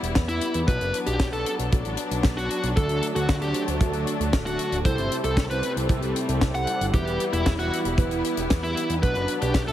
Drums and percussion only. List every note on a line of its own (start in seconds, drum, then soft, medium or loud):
0.03 closed hi-hat medium
0.15 kick loud
0.15 snare loud
0.15 closed hi-hat medium
0.29 closed hi-hat soft
0.41 closed hi-hat loud
0.54 closed hi-hat medium
0.68 kick loud
0.68 closed hi-hat medium
0.81 closed hi-hat soft
0.94 closed hi-hat medium
1.06 closed hi-hat medium
1.20 kick loud
1.20 snare loud
1.20 closed hi-hat medium
1.33 closed hi-hat soft
1.46 closed hi-hat loud
1.59 closed hi-hat medium
1.72 kick loud
1.72 closed hi-hat medium
1.85 closed hi-hat soft
1.97 closed hi-hat loud
2.11 closed hi-hat medium
2.23 kick loud
2.23 snare loud
2.23 closed hi-hat medium
2.38 closed hi-hat soft
2.50 closed hi-hat loud
2.63 closed hi-hat medium
2.77 kick loud
2.77 closed hi-hat medium
2.89 closed hi-hat soft
3.02 closed hi-hat loud
3.16 closed hi-hat medium
3.29 kick loud
3.29 snare loud
3.29 closed hi-hat medium
3.42 closed hi-hat soft
3.54 closed hi-hat loud
3.68 closed hi-hat medium
3.81 kick loud
3.81 closed hi-hat medium
3.93 closed hi-hat soft
4.07 closed hi-hat medium
4.21 closed hi-hat medium
4.33 kick loud
4.33 snare loud
4.33 closed hi-hat medium
4.47 closed hi-hat soft
4.59 closed hi-hat medium
4.72 closed hi-hat medium
4.85 kick loud
4.85 closed hi-hat medium
4.98 closed hi-hat soft
5.12 closed hi-hat medium
5.24 closed hi-hat medium
5.37 kick loud
5.37 snare loud
5.37 closed hi-hat medium
5.51 closed hi-hat soft
5.63 closed hi-hat medium
5.77 closed hi-hat medium
5.89 kick loud
5.89 closed hi-hat medium
6.02 closed hi-hat soft
6.16 closed hi-hat medium
6.29 closed hi-hat medium
6.41 kick loud
6.41 snare loud
6.41 closed hi-hat medium
6.55 closed hi-hat soft
6.67 closed hi-hat medium
6.81 closed hi-hat medium
6.94 kick loud
6.94 closed hi-hat medium
7.07 closed hi-hat soft
7.20 closed hi-hat medium
7.33 closed hi-hat medium
7.46 kick loud
7.46 snare loud
7.46 closed hi-hat medium
7.59 closed hi-hat soft
7.73 closed hi-hat medium
7.85 closed hi-hat medium
7.98 kick loud
7.98 closed hi-hat medium
8.11 closed hi-hat soft
8.24 closed hi-hat medium
8.37 closed hi-hat medium
8.50 kick loud
8.50 snare loud
8.50 closed hi-hat medium
8.64 closed hi-hat soft
8.77 closed hi-hat loud
8.90 closed hi-hat medium
9.03 kick loud
9.03 closed hi-hat medium
9.15 closed hi-hat soft
9.28 closed hi-hat loud
9.42 closed hi-hat medium
9.54 kick loud
9.54 snare loud
9.54 closed hi-hat medium
9.68 closed hi-hat soft